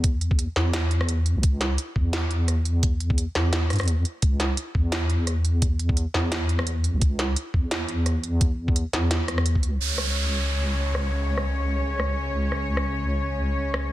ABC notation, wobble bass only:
X:1
M:4/4
L:1/16
Q:"Swing 16ths" 1/4=172
K:C#m
V:1 name="Wobble bass" clef=bass
E,,4- E,, z E,,8- E,, C,, | C,,4 z2 E,,8- E,,2- | E,,4- E,, z E,,4 G,, E,,3 z2 | C,,4 z2 E,,8- E,,2- |
E,,4- E,, z E,,8- E,, C,, | C,,4 z2 E,,8- E,,2- | E,,4- E,, z E,,8 C,,2 | C,,16- |
C,,16- | C,,16 |]